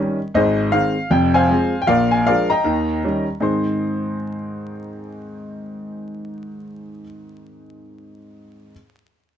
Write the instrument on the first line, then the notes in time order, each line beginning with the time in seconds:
grand piano
Already playing: D#3 G3 C#4 G4 A#4 D#5
0.34 G#1 G#2 G#4 C5 D#5
0.72 D#3 G#3 C4 F5
1.10 F1 F2 G5
1.34 C5 F5 G#5
1.49 F3 G#3 C4
1.82 G5
1.87 A#1 A#2 A#4 D5 F5
2.11 G#5
2.26 F3 G#3 D4 A#4 D5 F5
2.50 D#5 G5 A#5
2.64 D#2 D#3
3.04 D#3 G3 C#4
3.40 G#2 D#3 C4 D#4 G#4 C5 C6